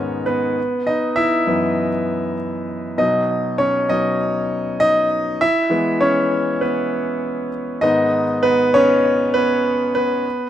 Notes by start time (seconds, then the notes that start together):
Already playing: G#2 D#3 B3 C#4 D#4 C#5 D#5
0.26 B3 B4
0.87 D#4 D#5
1.16 E4 E5
1.47 F#2 E3 B3
2.98 B2 F#3 D#4 D#5
3.58 C#4 C#5
3.89 B2 F#3 D#4 D#5
4.80 D#4 D#5
5.41 E4 E5
5.70 E3 G#3 B3
6.01 C#4 C#5
6.61 B3 B4
7.81 G#2 D#3 B3 D#4 D#5
8.43 B3 B4
8.74 C#4 C#5
9.34 B3 B4
9.95 B3 B4